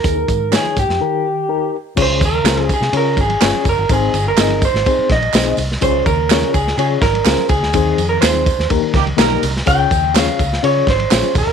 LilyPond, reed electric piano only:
<<
  \new Staff \with { instrumentName = "Reed electric piano" } { \time 4/4 \key des \lydian \tempo 4 = 125 <ees' aes' bes'>8 r8 <ees' aes' des''>8 r8 <ees' g' bes'>8 r8 <ees' g' bes'>8 r8 | <des' f' aes' des''>8 r8 <des' f' aes' c''>8 r8 <des' f' aes' des''>8 r8 <des' f' aes' des''>8 r8 | <c' ees' aes' c''>8 r8 <c' ees' aes' ees''>8 r8 <c' ees' aes' c''>8 r8 <c' ees' aes' c''>8 r8 | <des' f' aes' des''>8 r8 <des' f' aes' des''>8 r8 <des' f' aes' des''>8 r8 <des' f' aes' c''>8 r8 |
<c' ees' aes' c''>8 r8 <c' ees' aes' c''>8 r8 <bes ees' g' bes'>8 r8 <bes ees' g' bes'>8 r8 | <des' f' aes' des''>8 r8 <des' f' aes' des''>8 r8 <des' f' aes' des''>8 r8 <des' f' aes' des''>8 r8 | }
  \new Staff \with { instrumentName = "Reed electric piano" } { \clef bass \time 4/4 \key des \lydian ees4. r8 ees4. r8 | des4. r2 r8 | aes,4. r2 r8 | des4. r2 r8 |
ees4. r8 ees4. r8 | des4. r2 r8 | }
>>